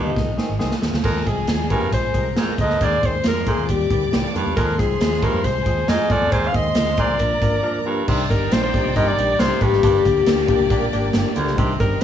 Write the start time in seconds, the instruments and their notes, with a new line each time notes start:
Already playing: baritone saxophone G2, alto saxophone D#4
0.06 fingered electric bass D2
0.15 fingered electric bass C2, tine electric piano D#3 G#3 C4 G#4, kick, snare
0.28 fingered electric bass A#1
0.37 tine electric piano D#3 G#3 C4 G#4, snare
0.49 fingered electric bass G#1
0.59 fingered electric bass C2, tine electric piano D#3 G#3 C4 G#4 C6, snare
0.71 snare
0.81 fingered electric bass D#2, tine electric piano D#3 G#3 C4 G#4, snare
0.93 fingered electric bass D2, snare
1.03 fingered electric bass D#2, baritone saxophone F2, tine electric piano F3 G#3 C4 G#4, violin section G#4 G#5, alto saxophone A#4, kick, crash
1.25 fingered electric bass C2, tine electric piano F3 G#3 C4 G#4, alto saxophone G#4, kick, closed hi-hat
1.47 fingered electric bass D#2, tine electric piano F3 G#3 C4 G#4, snare, closed hi-hat
1.70 baritone saxophone G2, tine electric piano F3 G#3 C4 G#4, alto saxophone A#4, kick, closed hi-hat
1.82 fingered electric bass F2
1.91 fingered electric bass A#1, tine electric piano F3 G#3 C4 G#4, alto saxophone C5, kick, closed hi-hat
2.13 fingered electric bass C2, tine electric piano F3 G#3 C4 G#4, violin section A#4 A#5, kick, closed hi-hat
2.36 baritone saxophone G#2, tine electric piano F3 G#3 C4 G#4, snare, closed hi-hat
2.49 muted fingered electric bass stroke
2.58 fingered electric bass D2, baritone saxophone F2, tine electric piano F3 G#3 C4 G#4, alto saxophone D#5, kick, closed hi-hat
2.70 snare
2.80 fingered electric bass D#2, baritone saxophone G#2, tine electric piano D#3 G#3 C4 G#4, violin section C5 C6, alto saxophone D5, kick, closed hi-hat
3.02 fingered electric bass D#2, tine electric piano D#3 G#3 C4 G#4, alto saxophone C5, kick, closed hi-hat
3.24 fingered electric bass F2, tine electric piano D#3 G#3 C4 G#4, snare, closed hi-hat
3.28 alto saxophone A#4
3.46 baritone saxophone A#2, tine electric piano D#3 G#3 C4 G#4, alto saxophone G#4, kick, closed hi-hat
3.58 fingered electric bass D#2
3.68 fingered electric bass D#2, tine electric piano D#3 G3 C4 G4, alto saxophone G4, violin section D5 D6, kick, closed hi-hat
3.90 fingered electric bass D2, tine electric piano D#3 G3 C4 G4, kick, closed hi-hat
4.12 fingered electric bass C2, tine electric piano D#3 G3 C4 G4, snare, closed hi-hat
4.35 fingered electric bass F2, baritone saxophone G2, tine electric piano D#3 G3 C4 G4, closed hi-hat
4.47 fingered electric bass E2
4.56 fingered electric bass D#2, baritone saxophone F2, tine electric piano F3 G#3 C4 G#4, alto saxophone A#4, violin section C5 C6, kick, closed hi-hat
4.78 fingered electric bass C2, tine electric piano F3 G#3 C4 D#4, alto saxophone G#4, kick, snare, closed hi-hat
4.99 fingered electric bass D#2, tine electric piano F3 G#3 C4 G#4, snare, closed hi-hat
5.21 baritone saxophone G2, tine electric piano F3 G#3 C4 G#4, alto saxophone A#4, kick, closed hi-hat
5.33 fingered electric bass F2
5.43 fingered electric bass C2, tine electric piano F3 G#3 C4 G#4, alto saxophone C5, kick, closed hi-hat
5.65 fingered electric bass D#2, tine electric piano F3 G#3 C4 G#4, violin section G#4 G#5, kick, closed hi-hat
5.87 fingered electric bass F2, baritone saxophone G#2, tine electric piano F3 G#3 C4 G#4, alto saxophone D#5, snare, closed hi-hat
6.09 fingered electric bass F2, baritone saxophone F2, tine electric piano F3 G#3 C4 G#4, alto saxophone D5, kick, closed hi-hat
6.22 fingered electric bass E2
6.31 fingered electric bass D#2, baritone saxophone G#2, tine electric piano D#3 G#3 C4 G#4, alto saxophone C5, violin section C5 C6, kick, closed hi-hat
6.48 alto saxophone F5
6.52 fingered electric bass D#2, tine electric piano D#3 G#3 C4 G#4, alto saxophone D#5, kick, closed hi-hat
6.75 fingered electric bass D2, tine electric piano D#3 G#3 C4 G#4, snare, closed hi-hat
6.97 baritone saxophone A#2, tine electric piano D#3 G#3 C4 G#4, alto saxophone D5, kick, closed hi-hat
7.09 fingered electric bass C2
7.19 fingered electric bass A#1, tine electric piano F3 A#3 D4 A#4, violin section A#4 A#5, kick, closed hi-hat
7.42 fingered electric bass G#1, tine electric piano F3 A#3 D4 A#4, kick, closed hi-hat
7.63 tine electric piano F3 A#3 D4 A#4
7.85 baritone saxophone G2, tine electric piano F3 A#3 D4 A#4
8.08 fingered electric bass C2, baritone saxophone C3, tine electric piano D#3 G3 C4 D4 G4, violin section D#4 D5 G5, kick, crash
8.30 fingered electric bass G1, tine electric piano D#3 G3 C4 D4 G4, alto saxophone A#4, kick, snare, closed hi-hat
8.52 fingered electric bass A#1, tine electric piano D#3 G3 C4 D4 A#4, alto saxophone C5, snare, closed hi-hat
8.63 alto saxophone C5
8.74 tine electric piano D#3 G3 C4 D4 G4, kick, closed hi-hat
8.86 fingered electric bass C2
8.96 fingered electric bass G1, baritone saxophone A#2, tine electric piano D#3 G3 C4 D4 G4, alto saxophone D#5, kick, closed hi-hat
9.07 alto saxophone D5
9.17 fingered electric bass A#1, tine electric piano D#3 G3 C4 D4 G4, closed hi-hat
9.39 fingered electric bass C2, baritone saxophone C3, tine electric piano D#3 G3 C4 D4 G4, alto saxophone C5, snare, closed hi-hat
9.61 fingered electric bass A1, baritone saxophone G2, tine electric piano D#3 G3 C4 D4 G4, alto saxophone G4, kick, closed hi-hat
9.71 fingered electric bass G#1, snare
9.83 fingered electric bass G1, baritone saxophone G2, violin section A#3 G4 D5, tine electric piano A#3 D4 G4, kick, closed hi-hat
10.05 fingered electric bass D2, tine electric piano A#3 D4 G4, kick, snare, closed hi-hat
10.26 fingered electric bass D2, tine electric piano A#3 D4 G4, snare, closed hi-hat
10.48 tine electric piano A#3 D4 G4, kick, closed hi-hat
10.60 fingered electric bass C2
10.70 fingered electric bass A#1, tine electric piano A#3 D4 G4, kick, closed hi-hat
10.92 fingered electric bass G#1, tine electric piano A#3 D4 G4, closed hi-hat
11.13 fingered electric bass G1, tine electric piano A#3 D4 G4, snare, closed hi-hat
11.36 baritone saxophone D2, fingered electric bass D2, tine electric piano A#3 D4 G4, closed hi-hat
11.47 fingered electric bass C#2, snare
11.57 fingered electric bass C2, baritone saxophone C3, tine electric piano D#3 G3 C4 D4 G4, violin section C4 G4 D#5, kick, closed hi-hat
11.79 fingered electric bass G1, tine electric piano D#3 G3 C4 D4 G4, alto saxophone A#4, kick, snare, closed hi-hat